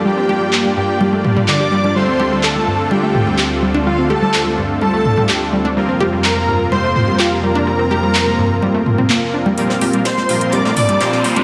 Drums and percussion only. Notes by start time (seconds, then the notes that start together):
0.29 high conga
0.53 clap
0.65 high conga
1.01 high conga
1.24 mid tom
1.37 mid tom, high conga
1.48 clap
1.84 high conga
2.20 high conga
2.43 clap
2.56 high conga
2.91 high conga
3.15 mid tom
3.27 high conga
3.38 clap
3.75 high conga
4.10 high conga
4.34 clap
4.46 high conga
4.81 high conga
5.05 mid tom
5.17 mid tom, high conga
5.29 clap
5.65 high conga
6.00 high conga
6.24 clap
6.36 high conga
6.72 high conga
6.96 mid tom
7.08 high conga
7.19 clap
7.55 high conga
7.91 high conga
8.15 clap
8.27 high conga
8.62 high conga
8.86 mid tom
8.98 mid tom, high conga
9.10 clap
9.46 high conga
9.58 closed hi-hat
9.70 snare
9.81 closed hi-hat, open hi-hat, high conga
9.93 closed hi-hat
10.05 snare, closed hi-hat
10.17 snare, high conga
10.29 closed hi-hat, open hi-hat
10.41 closed hi-hat
10.52 closed hi-hat, high conga
10.65 snare
10.76 closed hi-hat, mid tom, open hi-hat
10.89 closed hi-hat, high conga
11.00 snare, closed hi-hat
11.13 snare
11.24 snare, closed hi-hat, open hi-hat
11.36 closed hi-hat, high conga